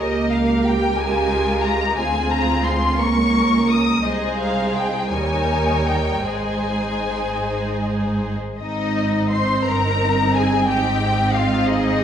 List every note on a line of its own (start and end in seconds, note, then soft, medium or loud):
0.00 1.96 C#2 soft
0.00 0.96 A#3 soft
0.00 1.96 G4 soft
0.00 1.97 A#4 soft
0.00 0.32 D#5 medium
0.32 0.66 F5 soft
0.66 1.00 G5 medium
0.97 2.00 G#3 soft
0.97 1.66 G#5 medium
1.01 1.99 F4 soft
1.64 1.99 A#5 medium
1.97 2.98 D2 soft
1.97 2.99 C4 soft
1.97 2.99 F4 soft
1.97 2.98 F4 soft
1.97 2.98 G#4 soft
1.97 2.31 G#5 medium
2.32 2.66 A#5 medium
2.67 3.00 C6 medium
2.98 4.05 C#2 soft
2.98 4.05 A#3 soft
2.98 4.04 C#4 soft
2.98 4.03 A#4 soft
2.98 3.70 C#6 medium
3.71 4.06 D#6 medium
4.03 5.09 C2 soft
4.03 5.10 C2 soft
4.03 5.09 G#3 soft
4.03 5.09 D#4 soft
4.03 5.10 G#4 soft
4.03 5.10 C5 soft
4.03 4.41 D#5 medium
4.42 4.77 F5 soft
4.78 5.14 G5 soft
5.12 6.26 D#2 soft
5.12 6.26 G3 soft
5.12 6.24 D#4 soft
5.12 6.27 A#4 soft
5.12 6.27 C#5 soft
5.12 5.86 G#5 medium
5.88 6.27 G5 soft
6.25 8.36 G#1 soft
6.25 8.35 G#2 soft
6.25 8.36 G#3 soft
6.25 8.35 D#4 soft
6.25 8.36 G#4 soft
6.25 8.36 C5 soft
6.25 8.22 G#5 soft
8.60 9.62 G#1 soft
8.60 9.61 G#2 soft
8.60 12.04 C4 soft
8.60 9.62 D#4 soft
8.60 9.28 D#4 soft
8.60 9.27 D#5 medium
9.32 9.66 C5 soft
9.32 9.65 C6 medium
9.64 10.67 G1 soft
9.64 10.66 G2 soft
9.64 10.65 D#4 soft
9.64 10.35 A#4 soft
9.64 10.35 A#5 medium
10.34 10.68 G#4 soft
10.34 10.69 G#5 medium
10.66 12.04 G#1 soft
10.66 12.04 G#2 soft
10.66 11.65 D#4 soft
10.66 11.34 G4 medium
10.66 11.33 G5 medium
11.34 11.69 F4 medium
11.34 11.68 F5 medium
11.65 12.01 G#4 soft
11.65 12.04 D#5 medium
11.69 12.04 D#4 medium
11.99 12.04 G4 soft